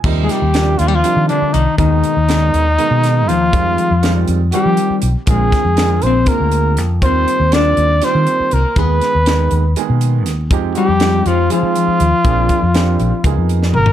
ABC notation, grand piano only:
X:1
M:7/8
L:1/8
Q:1/4=120
K:Eb
V:1 name="Grand piano"
[C,F,G,B,E] z [C,F,G,B,D] z [C,F,G,B,D]2 z | [_C,E,A,B,E] z [C,E,A,B,d] z [C,E,A,B,E]2 z | [E,G,A,CF] z [E,G,A,CF] z [E,F,G,CG]2 z | [D,A,B,CF] z [D,A,B,CF] z [D,A,B,CF]2 z |
[E,G,B,CF] z [E,G,B,CF] z [E,G,B,CF]2 z | [E,A,_CA] z [E,A,CE] z [E,A,B,CA]2 z | [F,A,CEG] z [F,A,CEG] z [F,A,CEA]2 z | [F,B,CDA] z [F,B,CDG] z [F,B,_CEA]2 z |]